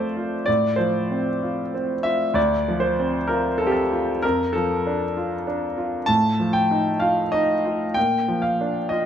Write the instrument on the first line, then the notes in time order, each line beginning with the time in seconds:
grand piano
Already playing: F2 F3 A3 F4 C5 D5 E5 F5
0.17 F4
0.46 A2 D5
0.76 F3 C5
1.11 C4
1.43 F4
1.74 C4
2.03 F4 E5
2.34 D2 D5
2.68 F3
2.80 C5
2.99 C4
3.27 F4 A#4
3.58 C4 A4
3.67 G4
3.72 A4
3.93 F4
4.22 F2 A#4
4.53 F3 A4
4.87 D4
5.17 F4
5.47 D4
5.78 F4
6.06 A2 A5
6.40 F3
6.53 G5
6.71 D#4
7.00 F4 F5
7.32 D#4 D#5
7.65 F4
7.94 A#2 G5
8.28 F3
8.42 F5
8.61 D4
8.89 F4 D#5